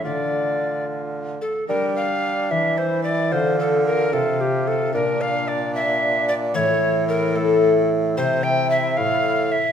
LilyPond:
<<
  \new Staff \with { instrumentName = "Recorder" } { \time 6/8 \key d \minor \tempo 4. = 74 d''4. r4 a'8 | bes'8 f''4 e''8 c''8 d''8 | c''8 a'8 bes'8 a'8 g'8 a'8 | bes'8 f''8 d''8 e''4 d''8 |
cis''4 bes'8 a'4 r8 | c''8 g''8 e''8 f''4 e''8 | }
  \new Staff \with { instrumentName = "Bassoon" } { \time 6/8 \key d \minor f'2~ f'8 r8 | d'2 e'4 | f'4. f'4. | d'2. |
e'4. e'4. | e'2. | }
  \new Staff \with { instrumentName = "Harp" } { \time 6/8 \key d \minor <a d' f'>2. | <d' g'>2. | <d' a'>2. | <d' d''>2. |
<e a a'>4. <a a'>4. | <c' g'>2. | }
  \new Staff \with { instrumentName = "Harp" } { \clef bass \time 6/8 \key d \minor d2. | g4. e4. | d4. c4. | bes,2. |
a,2. | c4. a,4. | }
  \new Staff \with { instrumentName = "Bassoon" } { \clef bass \time 6/8 \key d \minor d2~ d8 r8 | g4. e4. | d4. c4. | bes,2. |
a,2. | c4. a,4. | }
>>